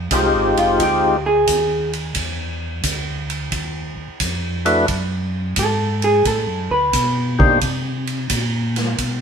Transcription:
0.11 C2 G#3 C4 D#4 F4 G4, kick, hi-hat pedal, ride
0.33 G#1
0.57 F1 F4, ride
0.79 D2 G4, kick, ride
1.26 G#4
1.47 D#2, kick, hi-hat pedal, ride
1.93 ride
2.15 E2, kick, ride
2.83 D2, kick, hi-hat pedal, ride
3.30 ride
3.52 D#2, kick, ride
3.97 D#2
4.20 F2, kick, hi-hat pedal, ride
4.65 A3 D4 E4 F#4 B4, ride
4.88 F#2, kick, ride
5.56 G#2 A4, kick, hi-hat pedal, ride
6.02 G#4, ride
6.25 A2 A4, kick, ride
6.47 F#2
6.70 D2 B4
6.93 B2, kick, hi-hat pedal, ride
7.39 A#3 D4 D#4 G4 C5, kick
7.61 C3, kick, ride
8.07 ride
8.30 A#2, kick, hi-hat pedal, ride
8.76 snare, ride
8.98 B2, kick, ride

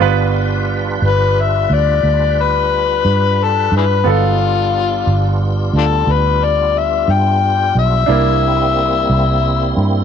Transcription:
0.00 G1 G3 B3 D4 F4 B4
1.02 G1
1.07 B4
1.41 E5
1.70 D2 D5
2.03 D2
2.42 B4
3.05 G2
3.43 A4
3.72 G2
3.77 E4 G#4 B4
4.04 G1 F#3 G3 B3 D#4 F4 A4
4.11 F4
4.37 G3 B3 D4 F4
5.07 G1
5.73 D2
5.78 D4 F4 A4
6.07 D2
6.12 B4
6.44 D5
6.78 E5
7.08 G2
7.12 G5
7.75 B1 E5
8.06 C2 G3 A#3 C4 D4 E4
9.09 C2
9.77 G2

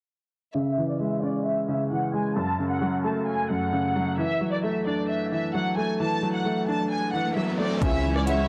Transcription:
0.55 C#3 E5
0.77 E3
0.89 D5
1.00 G#3 E5
1.23 C#4 D5
1.45 E5
1.68 C#3 E5
1.90 E3 F#5
2.13 G#3 G#5
2.36 F#2 A5
2.59 C#3
2.71 F#5
2.81 F#3
3.04 A3 A5
3.27 G#5
3.50 F#2 F#5
3.73 C#3
3.96 F#3
4.18 E3 E5
4.41 F#3
4.52 D5
4.64 A3 E5
4.86 D4 D5
5.08 E5
5.32 E3 E5
5.54 F#3 F#5
5.77 A3 G#5
6.00 E3 A5, riser
6.23 F#3
6.34 F#5
6.45 A3
6.68 D4 A5
6.91 G#5
7.13 E3 F#5
7.35 F#3 E5
7.59 A3 D5
7.82 C#2 C#3 G#3 C#4 E4 C#5 E5 G#5, kick, closed hi-hat
8.05 E3
8.16 D5, cross-stick
8.26 G#3 E5 F#5, closed hi-hat

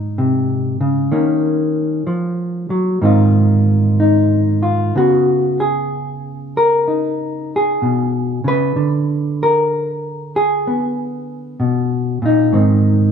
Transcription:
Already playing: G#2 D#4
0.18 C3
0.81 C#3
1.12 D#3 A#3 C#4
2.07 F3
2.70 F#3
3.02 G#2 D#3 C4 D#4 F4
4.00 D#4
4.63 F4
4.95 C#3 B3 F#4
5.60 G#4
6.57 A#4
6.88 D#4
7.56 G#4
7.82 B2
8.44 C#3 B4
8.76 D3
9.43 A#4
10.36 G#4
10.67 B3
11.60 B2
12.22 A#2 D#4
12.52 G#2 D#3 C4

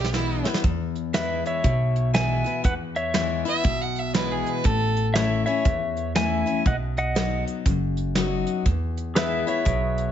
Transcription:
Already playing: B1 B2
0.00 G4
0.04 snare
0.13 E3 G#3 B3 E4, snare
0.44 B3 E4, snare
0.54 snare
0.64 E2, kick, closed hi-hat
0.95 closed hi-hat
1.13 E3 G#3 B3 E4 B4 E5, snare, closed hi-hat
1.46 C#5 E5, closed hi-hat
1.64 B1 B2, kick, closed hi-hat
1.96 closed hi-hat
2.14 E3 G#3 B3 E4 E5 G#5, snare, closed hi-hat
2.44 B3 E4, closed hi-hat
2.64 E2 B4 F#5, kick, closed hi-hat
2.96 C#5 E5, closed hi-hat
3.14 E3 G#3 B3 E4, snare, closed hi-hat
3.45 B3 E4 E5, closed hi-hat
3.64 B1 B2, kick, closed hi-hat
3.82 F#5
3.96 E5, closed hi-hat
4.14 E3 G#3 B3 E4 B4, snare, closed hi-hat
4.32 G#4
4.46 B4, closed hi-hat
4.64 A1 A2 A4, kick, closed hi-hat
4.97 closed hi-hat
5.14 E3 A3 C#4 E4 C#5 E5, snare, closed hi-hat
5.46 C#4 E4 C#5 E5, closed hi-hat
5.65 E2, kick, closed hi-hat
5.97 closed hi-hat
6.15 E3 A3 C#4 E4 E5 G#5, snare, closed hi-hat
6.46 C#4 E4, closed hi-hat
6.66 B1 B2 D#5 F#5, kick, closed hi-hat
6.97 D#5 F#5, closed hi-hat
7.15 F#3 B3 D#4 F#4, snare, closed hi-hat
7.47 closed hi-hat
7.66 F#1 F#2, kick, closed hi-hat
7.97 closed hi-hat
8.15 F#3 B3 D#4 F#4, snare, closed hi-hat
8.47 closed hi-hat
8.66 E2, kick, closed hi-hat
8.97 closed hi-hat
9.15 E3 G#3 B3 E4 G#4 B4 E5, snare, closed hi-hat
9.47 B3 E4 C#5 E5, closed hi-hat
9.65 B1 B2, kick, closed hi-hat
9.98 closed hi-hat

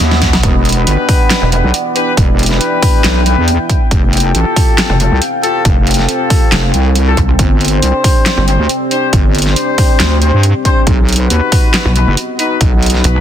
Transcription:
Already playing: B3 F#4 D#5 F#5, swell
0.00 D#2
0.11 snare
0.22 kick, snare, closed hi-hat
0.33 B1, snare, closed hi-hat
0.43 E1, kick, closed hi-hat
0.55 E4
0.63 G5, closed hi-hat
0.69 D5, closed hi-hat
0.72 closed hi-hat
0.77 D4 G4 B4
0.87 G1, closed hi-hat
1.09 kick, open hi-hat
1.30 snare, clap, closed hi-hat
1.42 E1
1.52 D4 G4 B4, closed hi-hat
1.64 B1
1.74 closed hi-hat
1.96 D4 G4 B4, closed hi-hat
2.17 E1, kick, closed hi-hat
2.39 closed hi-hat
2.43 closed hi-hat
2.46 closed hi-hat
2.51 D4 G4 B4, snare
2.61 closed hi-hat
2.83 kick, open hi-hat
3.04 B1, snare, clap, closed hi-hat
3.26 D4 G4 B4, closed hi-hat
3.38 E2
3.48 closed hi-hat
3.69 kick, closed hi-hat
3.91 F1 C4, kick, closed hi-hat
3.99 A4
4.13 closed hi-hat
4.17 closed hi-hat
4.20 F5, closed hi-hat
4.24 F4 G4 A4
4.35 A1, closed hi-hat
4.56 kick, open hi-hat
4.78 snare, clap, closed hi-hat
4.90 F1
5.00 F4 G4 A4, closed hi-hat
5.11 C2
5.22 closed hi-hat
5.43 F4 G4 A4, closed hi-hat
5.65 F1, kick, closed hi-hat
5.87 closed hi-hat
5.91 closed hi-hat
5.94 closed hi-hat
5.98 F4 G4 A4, snare
6.09 closed hi-hat
6.30 kick, open hi-hat
6.52 F1, snare, clap, closed hi-hat
6.74 C2, closed hi-hat
6.95 closed hi-hat
7.07 F4 G4 A4
7.17 C2, kick, closed hi-hat
7.39 G1, kick, closed hi-hat
7.47 G4
7.61 closed hi-hat
7.65 closed hi-hat
7.68 closed hi-hat
7.72 D4 G4 C5
7.77 D5
7.82 C2, closed hi-hat
8.04 kick, open hi-hat
8.26 snare, clap, closed hi-hat
8.37 G1
8.48 D4 G4 C5, closed hi-hat
8.59 D2
8.69 closed hi-hat
8.91 D4 G4 C5, closed hi-hat
9.13 G1, kick, closed hi-hat
9.35 closed hi-hat
9.38 closed hi-hat
9.42 closed hi-hat
9.46 D4 G4 C5, snare
9.56 closed hi-hat
9.78 kick, open hi-hat
10.00 D2, snare, clap, closed hi-hat
10.22 D4 G4 C5, closed hi-hat
10.33 G2
10.43 closed hi-hat
10.65 D4 G4 C5, kick, closed hi-hat
10.87 B1 B3, kick, closed hi-hat
11.09 F#4, closed hi-hat
11.12 closed hi-hat
11.16 closed hi-hat
11.20 D#4 F#4 B4 D#5
11.27 D#2 F#5, closed hi-hat
11.52 kick, open hi-hat
11.74 snare, clap, closed hi-hat
11.85 B1
11.96 D#4 F#4 B4, closed hi-hat
12.07 F#1
12.17 closed hi-hat
12.39 D#4 F#4 B4, closed hi-hat
12.61 B1, kick, closed hi-hat
12.82 closed hi-hat
12.86 closed hi-hat
12.90 closed hi-hat
12.94 D#4 F#4 B4, snare
13.04 B1, closed hi-hat

